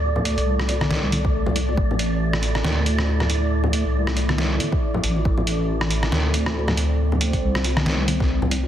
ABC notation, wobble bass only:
X:1
M:4/4
L:1/16
Q:"Swing 16ths" 1/4=138
K:Am
V:1 name="Wobble bass" clef=bass
D,,3 C,,4- C,, C,,4- C,, C,,3 | A,,,8 D,,8- | D,,3 C,,6- C,, z4 A,,,2 | A,,,8 D,,8- |
D,,3 C,,4- C,, C,,4- C,, C,,3 |]